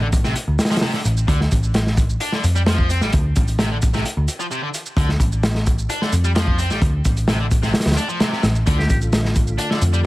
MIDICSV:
0, 0, Header, 1, 6, 480
1, 0, Start_track
1, 0, Key_signature, -1, "minor"
1, 0, Tempo, 461538
1, 1331, Time_signature, 4, 2, 24, 8
1, 10463, End_track
2, 0, Start_track
2, 0, Title_t, "Muted trumpet"
2, 0, Program_c, 0, 59
2, 9135, Note_on_c, 0, 67, 86
2, 9210, Note_off_c, 0, 67, 0
2, 9256, Note_on_c, 0, 67, 73
2, 9332, Note_off_c, 0, 67, 0
2, 10463, End_track
3, 0, Start_track
3, 0, Title_t, "Tonewheel organ"
3, 0, Program_c, 1, 16
3, 9013, Note_on_c, 1, 50, 66
3, 9013, Note_on_c, 1, 65, 73
3, 9014, Note_on_c, 1, 57, 61
3, 10463, Note_off_c, 1, 50, 0
3, 10463, Note_off_c, 1, 57, 0
3, 10463, Note_off_c, 1, 65, 0
3, 10463, End_track
4, 0, Start_track
4, 0, Title_t, "Distorted electric guitar"
4, 0, Program_c, 2, 30
4, 15, Note_on_c, 2, 50, 69
4, 71, Note_off_c, 2, 50, 0
4, 256, Note_on_c, 2, 48, 72
4, 349, Note_off_c, 2, 48, 0
4, 735, Note_on_c, 2, 53, 72
4, 791, Note_off_c, 2, 53, 0
4, 853, Note_on_c, 2, 48, 81
4, 951, Note_off_c, 2, 48, 0
4, 978, Note_on_c, 2, 50, 73
4, 1033, Note_off_c, 2, 50, 0
4, 1333, Note_on_c, 2, 50, 79
4, 1449, Note_off_c, 2, 50, 0
4, 2299, Note_on_c, 2, 62, 78
4, 2412, Note_off_c, 2, 62, 0
4, 2420, Note_on_c, 2, 50, 74
4, 2528, Note_off_c, 2, 50, 0
4, 2660, Note_on_c, 2, 55, 73
4, 2714, Note_off_c, 2, 55, 0
4, 2776, Note_on_c, 2, 53, 99
4, 3002, Note_off_c, 2, 53, 0
4, 3016, Note_on_c, 2, 60, 73
4, 3124, Note_off_c, 2, 60, 0
4, 3139, Note_on_c, 2, 55, 72
4, 3231, Note_off_c, 2, 55, 0
4, 3734, Note_on_c, 2, 48, 80
4, 3831, Note_off_c, 2, 48, 0
4, 3857, Note_on_c, 2, 50, 70
4, 3912, Note_off_c, 2, 50, 0
4, 4098, Note_on_c, 2, 48, 75
4, 4190, Note_off_c, 2, 48, 0
4, 4577, Note_on_c, 2, 53, 73
4, 4632, Note_off_c, 2, 53, 0
4, 4695, Note_on_c, 2, 48, 78
4, 4792, Note_off_c, 2, 48, 0
4, 4815, Note_on_c, 2, 50, 77
4, 4871, Note_off_c, 2, 50, 0
4, 5174, Note_on_c, 2, 50, 79
4, 5289, Note_off_c, 2, 50, 0
4, 6131, Note_on_c, 2, 62, 79
4, 6248, Note_off_c, 2, 62, 0
4, 6254, Note_on_c, 2, 50, 76
4, 6366, Note_off_c, 2, 50, 0
4, 6495, Note_on_c, 2, 55, 76
4, 6551, Note_off_c, 2, 55, 0
4, 6608, Note_on_c, 2, 53, 96
4, 6838, Note_off_c, 2, 53, 0
4, 6850, Note_on_c, 2, 60, 73
4, 6961, Note_off_c, 2, 60, 0
4, 6974, Note_on_c, 2, 55, 73
4, 7068, Note_off_c, 2, 55, 0
4, 7571, Note_on_c, 2, 48, 80
4, 7670, Note_off_c, 2, 48, 0
4, 7692, Note_on_c, 2, 50, 71
4, 7749, Note_off_c, 2, 50, 0
4, 7931, Note_on_c, 2, 48, 71
4, 8027, Note_off_c, 2, 48, 0
4, 8288, Note_on_c, 2, 62, 99
4, 8400, Note_off_c, 2, 62, 0
4, 8412, Note_on_c, 2, 53, 98
4, 8519, Note_off_c, 2, 53, 0
4, 8532, Note_on_c, 2, 48, 79
4, 8642, Note_off_c, 2, 48, 0
4, 8654, Note_on_c, 2, 48, 76
4, 8766, Note_off_c, 2, 48, 0
4, 9013, Note_on_c, 2, 50, 78
4, 9129, Note_off_c, 2, 50, 0
4, 9969, Note_on_c, 2, 62, 78
4, 10087, Note_off_c, 2, 62, 0
4, 10091, Note_on_c, 2, 50, 75
4, 10204, Note_off_c, 2, 50, 0
4, 10334, Note_on_c, 2, 55, 75
4, 10391, Note_off_c, 2, 55, 0
4, 10463, End_track
5, 0, Start_track
5, 0, Title_t, "Picked electric bass"
5, 0, Program_c, 3, 34
5, 0, Note_on_c, 3, 33, 79
5, 340, Note_off_c, 3, 33, 0
5, 494, Note_on_c, 3, 38, 80
5, 592, Note_off_c, 3, 38, 0
5, 1093, Note_on_c, 3, 33, 80
5, 1294, Note_off_c, 3, 33, 0
5, 1333, Note_on_c, 3, 38, 95
5, 1533, Note_off_c, 3, 38, 0
5, 1582, Note_on_c, 3, 33, 80
5, 2266, Note_off_c, 3, 33, 0
5, 2535, Note_on_c, 3, 41, 96
5, 3137, Note_off_c, 3, 41, 0
5, 3137, Note_on_c, 3, 33, 85
5, 3234, Note_off_c, 3, 33, 0
5, 3261, Note_on_c, 3, 38, 99
5, 3457, Note_off_c, 3, 38, 0
5, 3501, Note_on_c, 3, 33, 79
5, 4185, Note_off_c, 3, 33, 0
5, 4336, Note_on_c, 3, 38, 81
5, 4433, Note_off_c, 3, 38, 0
5, 5165, Note_on_c, 3, 38, 98
5, 5370, Note_off_c, 3, 38, 0
5, 5405, Note_on_c, 3, 33, 81
5, 6097, Note_off_c, 3, 33, 0
5, 6370, Note_on_c, 3, 41, 96
5, 6973, Note_off_c, 3, 41, 0
5, 6973, Note_on_c, 3, 33, 82
5, 7072, Note_off_c, 3, 33, 0
5, 7090, Note_on_c, 3, 38, 98
5, 7292, Note_off_c, 3, 38, 0
5, 7335, Note_on_c, 3, 33, 80
5, 8022, Note_off_c, 3, 33, 0
5, 8175, Note_on_c, 3, 38, 81
5, 8272, Note_off_c, 3, 38, 0
5, 8771, Note_on_c, 3, 33, 81
5, 8972, Note_off_c, 3, 33, 0
5, 9019, Note_on_c, 3, 38, 99
5, 9216, Note_off_c, 3, 38, 0
5, 9256, Note_on_c, 3, 33, 79
5, 9943, Note_off_c, 3, 33, 0
5, 10209, Note_on_c, 3, 41, 96
5, 10463, Note_off_c, 3, 41, 0
5, 10463, End_track
6, 0, Start_track
6, 0, Title_t, "Drums"
6, 128, Note_on_c, 9, 42, 67
6, 133, Note_on_c, 9, 36, 98
6, 134, Note_on_c, 9, 82, 70
6, 232, Note_off_c, 9, 42, 0
6, 237, Note_off_c, 9, 36, 0
6, 238, Note_off_c, 9, 82, 0
6, 253, Note_on_c, 9, 38, 38
6, 256, Note_on_c, 9, 82, 39
6, 357, Note_off_c, 9, 38, 0
6, 360, Note_off_c, 9, 82, 0
6, 368, Note_on_c, 9, 42, 78
6, 374, Note_on_c, 9, 82, 30
6, 472, Note_off_c, 9, 42, 0
6, 478, Note_off_c, 9, 82, 0
6, 612, Note_on_c, 9, 38, 92
6, 615, Note_on_c, 9, 82, 71
6, 619, Note_on_c, 9, 42, 62
6, 675, Note_off_c, 9, 38, 0
6, 675, Note_on_c, 9, 38, 88
6, 676, Note_off_c, 9, 42, 0
6, 676, Note_on_c, 9, 42, 67
6, 719, Note_off_c, 9, 82, 0
6, 739, Note_off_c, 9, 38, 0
6, 739, Note_on_c, 9, 38, 85
6, 739, Note_on_c, 9, 82, 41
6, 741, Note_off_c, 9, 42, 0
6, 741, Note_on_c, 9, 42, 64
6, 793, Note_off_c, 9, 42, 0
6, 793, Note_on_c, 9, 42, 65
6, 799, Note_off_c, 9, 38, 0
6, 799, Note_on_c, 9, 38, 79
6, 843, Note_off_c, 9, 82, 0
6, 846, Note_off_c, 9, 38, 0
6, 846, Note_on_c, 9, 38, 107
6, 856, Note_on_c, 9, 82, 30
6, 858, Note_on_c, 9, 46, 83
6, 897, Note_off_c, 9, 42, 0
6, 950, Note_off_c, 9, 38, 0
6, 960, Note_off_c, 9, 82, 0
6, 962, Note_off_c, 9, 46, 0
6, 972, Note_on_c, 9, 38, 38
6, 1076, Note_off_c, 9, 38, 0
6, 1095, Note_on_c, 9, 82, 71
6, 1101, Note_on_c, 9, 42, 72
6, 1199, Note_off_c, 9, 82, 0
6, 1205, Note_off_c, 9, 42, 0
6, 1219, Note_on_c, 9, 82, 40
6, 1323, Note_off_c, 9, 82, 0
6, 1333, Note_on_c, 9, 36, 97
6, 1336, Note_on_c, 9, 82, 29
6, 1338, Note_on_c, 9, 42, 87
6, 1437, Note_off_c, 9, 36, 0
6, 1440, Note_off_c, 9, 82, 0
6, 1442, Note_off_c, 9, 42, 0
6, 1462, Note_on_c, 9, 38, 42
6, 1566, Note_off_c, 9, 38, 0
6, 1576, Note_on_c, 9, 82, 69
6, 1581, Note_on_c, 9, 36, 84
6, 1582, Note_on_c, 9, 42, 66
6, 1680, Note_off_c, 9, 82, 0
6, 1685, Note_off_c, 9, 36, 0
6, 1686, Note_off_c, 9, 42, 0
6, 1698, Note_on_c, 9, 82, 39
6, 1802, Note_off_c, 9, 82, 0
6, 1810, Note_on_c, 9, 42, 78
6, 1815, Note_on_c, 9, 82, 29
6, 1819, Note_on_c, 9, 38, 107
6, 1914, Note_off_c, 9, 42, 0
6, 1919, Note_off_c, 9, 82, 0
6, 1923, Note_off_c, 9, 38, 0
6, 1940, Note_on_c, 9, 38, 53
6, 2044, Note_off_c, 9, 38, 0
6, 2049, Note_on_c, 9, 42, 71
6, 2053, Note_on_c, 9, 36, 101
6, 2057, Note_on_c, 9, 82, 69
6, 2153, Note_off_c, 9, 42, 0
6, 2157, Note_off_c, 9, 36, 0
6, 2161, Note_off_c, 9, 82, 0
6, 2178, Note_on_c, 9, 82, 37
6, 2282, Note_off_c, 9, 82, 0
6, 2291, Note_on_c, 9, 42, 88
6, 2297, Note_on_c, 9, 82, 28
6, 2395, Note_off_c, 9, 42, 0
6, 2401, Note_off_c, 9, 82, 0
6, 2416, Note_on_c, 9, 38, 36
6, 2520, Note_off_c, 9, 38, 0
6, 2535, Note_on_c, 9, 42, 72
6, 2536, Note_on_c, 9, 82, 69
6, 2639, Note_off_c, 9, 42, 0
6, 2640, Note_off_c, 9, 82, 0
6, 2659, Note_on_c, 9, 82, 39
6, 2763, Note_off_c, 9, 82, 0
6, 2771, Note_on_c, 9, 38, 120
6, 2776, Note_on_c, 9, 82, 30
6, 2778, Note_on_c, 9, 42, 86
6, 2875, Note_off_c, 9, 38, 0
6, 2880, Note_off_c, 9, 82, 0
6, 2882, Note_off_c, 9, 42, 0
6, 2895, Note_on_c, 9, 36, 88
6, 2999, Note_off_c, 9, 36, 0
6, 3015, Note_on_c, 9, 82, 69
6, 3018, Note_on_c, 9, 42, 62
6, 3119, Note_off_c, 9, 82, 0
6, 3122, Note_off_c, 9, 42, 0
6, 3134, Note_on_c, 9, 38, 35
6, 3139, Note_on_c, 9, 82, 40
6, 3238, Note_off_c, 9, 38, 0
6, 3243, Note_off_c, 9, 82, 0
6, 3249, Note_on_c, 9, 42, 86
6, 3255, Note_on_c, 9, 82, 30
6, 3260, Note_on_c, 9, 36, 105
6, 3353, Note_off_c, 9, 42, 0
6, 3359, Note_off_c, 9, 82, 0
6, 3364, Note_off_c, 9, 36, 0
6, 3491, Note_on_c, 9, 42, 62
6, 3495, Note_on_c, 9, 82, 69
6, 3501, Note_on_c, 9, 36, 96
6, 3595, Note_off_c, 9, 42, 0
6, 3599, Note_off_c, 9, 82, 0
6, 3605, Note_off_c, 9, 36, 0
6, 3616, Note_on_c, 9, 82, 38
6, 3620, Note_on_c, 9, 42, 42
6, 3720, Note_off_c, 9, 82, 0
6, 3724, Note_off_c, 9, 42, 0
6, 3731, Note_on_c, 9, 38, 112
6, 3733, Note_on_c, 9, 82, 29
6, 3735, Note_on_c, 9, 42, 88
6, 3835, Note_off_c, 9, 38, 0
6, 3837, Note_off_c, 9, 82, 0
6, 3839, Note_off_c, 9, 42, 0
6, 3972, Note_on_c, 9, 42, 62
6, 3973, Note_on_c, 9, 82, 69
6, 3982, Note_on_c, 9, 36, 97
6, 4076, Note_off_c, 9, 42, 0
6, 4077, Note_off_c, 9, 82, 0
6, 4086, Note_off_c, 9, 36, 0
6, 4095, Note_on_c, 9, 82, 39
6, 4105, Note_on_c, 9, 38, 40
6, 4199, Note_off_c, 9, 82, 0
6, 4209, Note_off_c, 9, 38, 0
6, 4213, Note_on_c, 9, 82, 29
6, 4217, Note_on_c, 9, 42, 90
6, 4317, Note_off_c, 9, 82, 0
6, 4321, Note_off_c, 9, 42, 0
6, 4452, Note_on_c, 9, 42, 66
6, 4454, Note_on_c, 9, 82, 67
6, 4556, Note_off_c, 9, 42, 0
6, 4558, Note_off_c, 9, 82, 0
6, 4576, Note_on_c, 9, 82, 39
6, 4680, Note_off_c, 9, 82, 0
6, 4693, Note_on_c, 9, 82, 30
6, 4797, Note_off_c, 9, 82, 0
6, 4932, Note_on_c, 9, 82, 70
6, 4934, Note_on_c, 9, 42, 69
6, 5036, Note_off_c, 9, 82, 0
6, 5038, Note_off_c, 9, 42, 0
6, 5055, Note_on_c, 9, 82, 40
6, 5159, Note_off_c, 9, 82, 0
6, 5165, Note_on_c, 9, 36, 110
6, 5173, Note_on_c, 9, 82, 30
6, 5175, Note_on_c, 9, 42, 87
6, 5269, Note_off_c, 9, 36, 0
6, 5277, Note_off_c, 9, 82, 0
6, 5279, Note_off_c, 9, 42, 0
6, 5292, Note_on_c, 9, 38, 41
6, 5396, Note_off_c, 9, 38, 0
6, 5406, Note_on_c, 9, 36, 89
6, 5409, Note_on_c, 9, 42, 64
6, 5412, Note_on_c, 9, 82, 69
6, 5510, Note_off_c, 9, 36, 0
6, 5513, Note_off_c, 9, 42, 0
6, 5516, Note_off_c, 9, 82, 0
6, 5536, Note_on_c, 9, 82, 38
6, 5640, Note_off_c, 9, 82, 0
6, 5650, Note_on_c, 9, 42, 82
6, 5651, Note_on_c, 9, 38, 114
6, 5653, Note_on_c, 9, 82, 31
6, 5754, Note_off_c, 9, 42, 0
6, 5755, Note_off_c, 9, 38, 0
6, 5757, Note_off_c, 9, 82, 0
6, 5771, Note_on_c, 9, 38, 51
6, 5875, Note_off_c, 9, 38, 0
6, 5890, Note_on_c, 9, 42, 63
6, 5892, Note_on_c, 9, 82, 71
6, 5897, Note_on_c, 9, 36, 91
6, 5994, Note_off_c, 9, 42, 0
6, 5996, Note_off_c, 9, 82, 0
6, 6001, Note_off_c, 9, 36, 0
6, 6015, Note_on_c, 9, 82, 39
6, 6119, Note_off_c, 9, 82, 0
6, 6132, Note_on_c, 9, 42, 94
6, 6132, Note_on_c, 9, 82, 30
6, 6236, Note_off_c, 9, 42, 0
6, 6236, Note_off_c, 9, 82, 0
6, 6258, Note_on_c, 9, 38, 39
6, 6362, Note_off_c, 9, 38, 0
6, 6368, Note_on_c, 9, 42, 63
6, 6371, Note_on_c, 9, 82, 70
6, 6472, Note_off_c, 9, 42, 0
6, 6475, Note_off_c, 9, 82, 0
6, 6494, Note_on_c, 9, 82, 41
6, 6598, Note_off_c, 9, 82, 0
6, 6612, Note_on_c, 9, 42, 86
6, 6612, Note_on_c, 9, 82, 30
6, 6616, Note_on_c, 9, 38, 106
6, 6716, Note_off_c, 9, 42, 0
6, 6716, Note_off_c, 9, 82, 0
6, 6720, Note_off_c, 9, 38, 0
6, 6731, Note_on_c, 9, 36, 98
6, 6835, Note_off_c, 9, 36, 0
6, 6851, Note_on_c, 9, 82, 71
6, 6853, Note_on_c, 9, 42, 72
6, 6955, Note_off_c, 9, 82, 0
6, 6957, Note_off_c, 9, 42, 0
6, 6974, Note_on_c, 9, 82, 41
6, 6976, Note_on_c, 9, 38, 34
6, 7078, Note_off_c, 9, 82, 0
6, 7080, Note_off_c, 9, 38, 0
6, 7089, Note_on_c, 9, 36, 96
6, 7089, Note_on_c, 9, 42, 77
6, 7091, Note_on_c, 9, 82, 31
6, 7193, Note_off_c, 9, 36, 0
6, 7193, Note_off_c, 9, 42, 0
6, 7195, Note_off_c, 9, 82, 0
6, 7329, Note_on_c, 9, 42, 68
6, 7331, Note_on_c, 9, 82, 73
6, 7335, Note_on_c, 9, 36, 92
6, 7433, Note_off_c, 9, 42, 0
6, 7435, Note_off_c, 9, 82, 0
6, 7439, Note_off_c, 9, 36, 0
6, 7455, Note_on_c, 9, 82, 41
6, 7456, Note_on_c, 9, 42, 44
6, 7559, Note_off_c, 9, 82, 0
6, 7560, Note_off_c, 9, 42, 0
6, 7567, Note_on_c, 9, 38, 120
6, 7573, Note_on_c, 9, 82, 32
6, 7574, Note_on_c, 9, 42, 77
6, 7671, Note_off_c, 9, 38, 0
6, 7677, Note_off_c, 9, 82, 0
6, 7678, Note_off_c, 9, 42, 0
6, 7811, Note_on_c, 9, 82, 73
6, 7813, Note_on_c, 9, 42, 64
6, 7814, Note_on_c, 9, 36, 86
6, 7915, Note_off_c, 9, 82, 0
6, 7917, Note_off_c, 9, 42, 0
6, 7918, Note_off_c, 9, 36, 0
6, 7936, Note_on_c, 9, 82, 40
6, 7938, Note_on_c, 9, 38, 38
6, 8040, Note_off_c, 9, 82, 0
6, 8042, Note_off_c, 9, 38, 0
6, 8045, Note_on_c, 9, 38, 89
6, 8052, Note_on_c, 9, 42, 68
6, 8052, Note_on_c, 9, 82, 31
6, 8112, Note_off_c, 9, 38, 0
6, 8112, Note_on_c, 9, 38, 81
6, 8118, Note_off_c, 9, 42, 0
6, 8118, Note_on_c, 9, 42, 70
6, 8156, Note_off_c, 9, 82, 0
6, 8171, Note_off_c, 9, 42, 0
6, 8171, Note_on_c, 9, 42, 64
6, 8173, Note_off_c, 9, 38, 0
6, 8173, Note_on_c, 9, 38, 88
6, 8230, Note_off_c, 9, 42, 0
6, 8230, Note_on_c, 9, 42, 60
6, 8233, Note_off_c, 9, 38, 0
6, 8233, Note_on_c, 9, 38, 80
6, 8292, Note_on_c, 9, 82, 74
6, 8300, Note_off_c, 9, 42, 0
6, 8300, Note_on_c, 9, 42, 69
6, 8337, Note_off_c, 9, 38, 0
6, 8396, Note_off_c, 9, 82, 0
6, 8404, Note_off_c, 9, 42, 0
6, 8414, Note_on_c, 9, 82, 42
6, 8518, Note_off_c, 9, 82, 0
6, 8531, Note_on_c, 9, 42, 76
6, 8532, Note_on_c, 9, 82, 32
6, 8533, Note_on_c, 9, 38, 107
6, 8635, Note_off_c, 9, 42, 0
6, 8636, Note_off_c, 9, 82, 0
6, 8637, Note_off_c, 9, 38, 0
6, 8659, Note_on_c, 9, 38, 40
6, 8763, Note_off_c, 9, 38, 0
6, 8770, Note_on_c, 9, 38, 93
6, 8772, Note_on_c, 9, 82, 72
6, 8776, Note_on_c, 9, 42, 79
6, 8874, Note_off_c, 9, 38, 0
6, 8876, Note_off_c, 9, 82, 0
6, 8880, Note_off_c, 9, 42, 0
6, 8895, Note_on_c, 9, 82, 41
6, 8999, Note_off_c, 9, 82, 0
6, 9013, Note_on_c, 9, 82, 33
6, 9016, Note_on_c, 9, 42, 80
6, 9019, Note_on_c, 9, 36, 113
6, 9117, Note_off_c, 9, 82, 0
6, 9120, Note_off_c, 9, 42, 0
6, 9123, Note_off_c, 9, 36, 0
6, 9143, Note_on_c, 9, 38, 47
6, 9247, Note_off_c, 9, 38, 0
6, 9252, Note_on_c, 9, 82, 73
6, 9256, Note_on_c, 9, 36, 92
6, 9259, Note_on_c, 9, 42, 66
6, 9356, Note_off_c, 9, 82, 0
6, 9360, Note_off_c, 9, 36, 0
6, 9363, Note_off_c, 9, 42, 0
6, 9374, Note_on_c, 9, 82, 43
6, 9478, Note_off_c, 9, 82, 0
6, 9491, Note_on_c, 9, 42, 88
6, 9492, Note_on_c, 9, 82, 31
6, 9494, Note_on_c, 9, 38, 105
6, 9595, Note_off_c, 9, 42, 0
6, 9596, Note_off_c, 9, 82, 0
6, 9598, Note_off_c, 9, 38, 0
6, 9617, Note_on_c, 9, 38, 56
6, 9721, Note_off_c, 9, 38, 0
6, 9729, Note_on_c, 9, 42, 66
6, 9731, Note_on_c, 9, 82, 73
6, 9733, Note_on_c, 9, 36, 86
6, 9833, Note_off_c, 9, 42, 0
6, 9835, Note_off_c, 9, 82, 0
6, 9837, Note_off_c, 9, 36, 0
6, 9852, Note_on_c, 9, 82, 41
6, 9956, Note_off_c, 9, 82, 0
6, 9967, Note_on_c, 9, 42, 83
6, 9972, Note_on_c, 9, 82, 32
6, 10071, Note_off_c, 9, 42, 0
6, 10076, Note_off_c, 9, 82, 0
6, 10096, Note_on_c, 9, 38, 40
6, 10200, Note_off_c, 9, 38, 0
6, 10209, Note_on_c, 9, 42, 63
6, 10209, Note_on_c, 9, 82, 77
6, 10313, Note_off_c, 9, 42, 0
6, 10313, Note_off_c, 9, 82, 0
6, 10334, Note_on_c, 9, 82, 42
6, 10438, Note_off_c, 9, 82, 0
6, 10463, End_track
0, 0, End_of_file